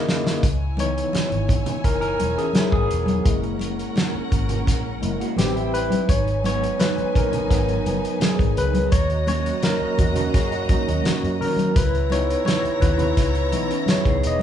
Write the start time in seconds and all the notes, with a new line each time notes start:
Already playing: C#3 A#3 E4 D#5
0.09 snare
0.27 snare
0.43 C#2 E4 C#5 G#5, kick, closed hi-hat, muted conga
0.77 E3 B3 D#4 C#5, closed hi-hat, muted conga
0.98 closed hi-hat
1.13 muted fingered electric bass stroke, snare, closed hi-hat, high conga
1.32 G#1, closed hi-hat
1.49 kick, closed hi-hat, low conga
1.66 closed hi-hat, low conga
1.84 F#1 A#4, kick, closed hi-hat
2.01 A#4, closed hi-hat
2.20 E1, closed hi-hat, muted conga
2.38 E3 C#4 G#4, closed hi-hat
2.53 G#3 E4, snare, closed hi-hat, high conga
2.72 G#1 B3 G#4, kick
2.91 E1, closed hi-hat
3.06 closed hi-hat, high conga
3.25 F#1 G#3 A#3 C#4 E4 A#4 F#5, kick, closed hi-hat
3.43 closed hi-hat
3.59 closed hi-hat, muted conga
3.79 closed hi-hat
3.96 snare, closed hi-hat, high conga
4.15 muted fingered electric bass stroke
4.32 G#1, kick, closed hi-hat
4.49 closed hi-hat, low conga
4.67 A#1, kick, snare, closed hi-hat
5.01 F#1 G#3 A#3 E4, closed hi-hat, muted conga
5.20 A#3 F#4, closed hi-hat
5.36 A1 G3 B3 C4 E4 G4 B4 C5 G5, snare, closed hi-hat, high conga
5.56 G3 E4, closed hi-hat
5.74 B4, closed hi-hat
5.90 closed hi-hat, high conga
6.08 G#1 D#4 B4 C#5 G#5, kick, closed hi-hat
6.28 closed hi-hat
6.44 F#3 G#3 B3 C#5, closed hi-hat, muted conga
6.63 closed hi-hat
6.80 B4, snare, closed hi-hat, high conga
6.98 muted fingered electric bass stroke, closed hi-hat
7.15 A#1 A#4, kick, closed hi-hat, low conga
7.32 closed hi-hat, low conga
7.50 G#1 F#3 B3 A#4, kick, snare, closed hi-hat
7.69 closed hi-hat
7.86 F#1, closed hi-hat, muted conga
8.05 closed hi-hat
8.20 G#4, snare, closed hi-hat, high conga
8.39 G#1, kick, closed hi-hat
8.57 C#2 B4, closed hi-hat
8.74 closed hi-hat, high conga
8.91 D#2 F#4 C#5 D#5 A#5, kick, closed hi-hat, muted conga
9.10 closed hi-hat
9.27 F#3 A#3 C#4 C#5, closed hi-hat, muted conga
9.46 closed hi-hat
9.62 A#4, snare, closed hi-hat, high conga
9.81 muted fingered electric bass stroke
9.98 E2 F#4, kick, closed hi-hat, low conga
10.16 C#4 A#4, closed hi-hat, low conga
10.34 F#2 G#4, kick, snare, closed hi-hat
10.52 A#3 F#4, closed hi-hat
10.69 F#3 A#3 C#4 D#4, muted fingered electric bass stroke, kick, closed hi-hat, muted conga
10.88 D#2 C#4, closed hi-hat
11.04 F#4, muted fingered electric bass stroke, snare, closed hi-hat, high conga
11.23 F#2, closed hi-hat
11.41 D#3 A#4, open hi-hat
11.57 closed hi-hat, high conga
11.75 C#2 C#3 B3 E4 B4 C#5 A#5, kick, closed hi-hat
11.95 closed hi-hat
12.10 B3 D#4 E4 C#5, closed hi-hat, muted conga
12.30 closed hi-hat
12.45 C#5, snare, closed hi-hat, high conga
12.65 muted fingered electric bass stroke, closed hi-hat
12.80 D#2 B4, kick, closed hi-hat, low conga
12.98 closed hi-hat, low conga
13.17 C#2, kick, snare, closed hi-hat
13.35 closed hi-hat
13.52 B1 E3 B3 D#4, closed hi-hat, muted conga
13.70 E3 C#4, closed hi-hat
13.86 G#3 E4, snare, closed hi-hat, high conga
13.91 C#5
14.05 C#2 B3 G#4, kick, closed hi-hat
14.23 E1 D#5, closed hi-hat
14.39 high conga